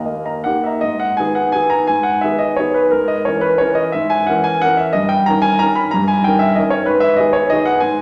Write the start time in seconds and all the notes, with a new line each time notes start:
Already playing: D#2 D#5 G5 A#5
0.06 A#3 D#5
0.25 D#5 A#5
0.44 D#3 A#3 G4 F#5
0.64 D#5 E5 A#5
0.81 G#2 D#5
1.00 F#5
1.17 D#3 B3 G#4 G#5
1.35 F#5
1.52 D#3 B3 G#4 G#5
1.70 A#5
1.87 G#2 G#5
2.03 F#5
2.21 D#3 B3 G#4 E5
2.39 D#5
2.56 D#3 B3 G#4 C#5
2.74 B4
2.91 G#2 A#4
3.08 D#5
3.25 E3 C#4 A#4 C#5
3.41 B4
3.58 E3 C#4 A#4 C#5
3.75 D#5
3.92 G#2 E5
4.10 G#5
4.27 E3 C#4 A#4 F#5
4.44 G#5
4.61 E3 C#4 A#4 F#5
4.77 E5
4.93 G2 D#5
5.09 G5
5.26 D#3 C#4 A#4 A#5
5.42 G#5
5.59 D#3 C#4 A#4 A#5
5.75 B5
5.91 G2 A#5
6.08 G#5
6.24 D#3 C#4 A#4 G5
6.39 E5
6.55 D#3 C#4 A#4 D#5
6.70 C#5
6.86 G#2 B4
7.00 E5
7.16 D#3 B3 G#4 D#5
7.33 C#5
7.50 D#3 B3 G#4 D#5
7.66 F#5
7.80 G#2 G#5